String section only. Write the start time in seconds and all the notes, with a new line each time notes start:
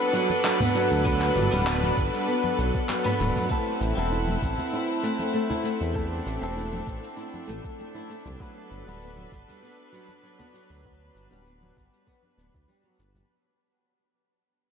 Already playing: D4 A4 B4
3.50 A3 C4 E4
5.96 D4
8.40 A4 B4